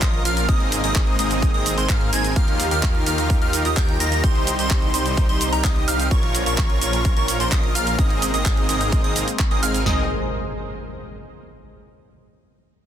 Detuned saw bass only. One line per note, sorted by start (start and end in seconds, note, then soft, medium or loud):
0.02 0.23 A#1 loud
0.25 0.46 A#1 loud
0.49 0.81 G#1 medium
0.84 1.17 G#1 loud
1.19 1.52 G#1 loud
1.54 1.75 G#1 medium
1.78 1.87 G#1 loud
1.89 2.10 G#2 loud
2.13 2.34 G#1 medium
2.36 2.69 D#2 medium
2.71 3.04 D#2 loud
3.07 3.39 D#2 loud
3.42 3.63 D#2 medium
3.65 3.74 D#2 loud
3.77 3.98 D#2 loud
4.00 4.21 D#2 loud
4.24 4.56 C2 loud
4.59 4.92 C2 loud
4.94 5.27 C2 medium
5.29 5.50 C2 loud
5.53 5.62 C2 loud
5.64 5.85 C2 loud
5.88 6.09 C2 loud
6.11 6.44 A#1 loud
6.46 6.79 A#1 medium
6.81 7.14 A#1 loud
7.17 7.38 A#1 medium
7.40 7.49 A#1 loud
7.52 7.73 A#1 loud
7.75 7.96 A#1 loud
7.99 8.31 G#1 loud
8.34 8.67 G#1 loud
8.69 9.02 G#1 medium
9.04 9.23 G#1 loud
9.51 9.60 G#1 loud
9.63 9.84 G#1 loud
9.86 10.08 G#1 medium